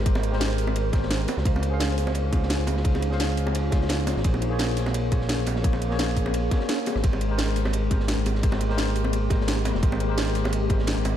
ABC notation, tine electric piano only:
X:1
M:4/4
L:1/16
Q:"Swing 16ths" 1/4=172
K:Ab
V:1 name="Tine electric piano"
[A,GBc]3 [A,GBc]6- [A,GBc] [A,GBc]4 z2 | [DAcf]3 [DAcf]6- [DAcf] [DAcf]6 | [DAcf]3 [DAcf]6- [DAcf] [DAcf]6 | [B,Acd]3 [B,Acd]6- [B,Acd] [B,Acd]6 |
[B,Acd]3 [B,Acd]6- [B,Acd] [B,Acd]6 | [A,GBc]3 [A,GBc]6- [A,GBc] [A,GBc]6 | [A,GBc]3 [A,GBc]6- [A,GBc] [A,GBc]6 | [A,GBc]3 [A,GBc]6- [A,GBc] [A,GBc]6 |]